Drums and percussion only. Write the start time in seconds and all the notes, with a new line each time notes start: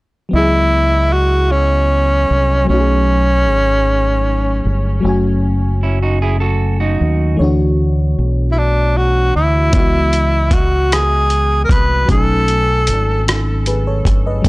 9.73 kick, closed hi-hat
10.13 closed hi-hat
10.51 kick, closed hi-hat
10.92 cross-stick, closed hi-hat
11.30 closed hi-hat
11.69 kick, closed hi-hat
12.09 kick, closed hi-hat
12.48 closed hi-hat
12.87 closed hi-hat
13.28 cross-stick, closed hi-hat
13.66 closed hi-hat
14.05 kick, closed hi-hat
14.44 kick, closed hi-hat